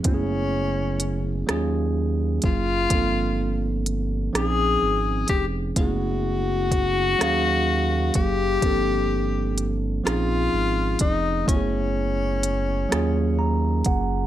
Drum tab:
HH |x-xx-x|x-xx-x|x-xx-x|x-xx-x|
SD |---r--|---r--|---r--|---r--|
BD |o----o|o----o|o-o--o|o----o|

HH |x-xx-x|
SD |---r--|
BD |o----o|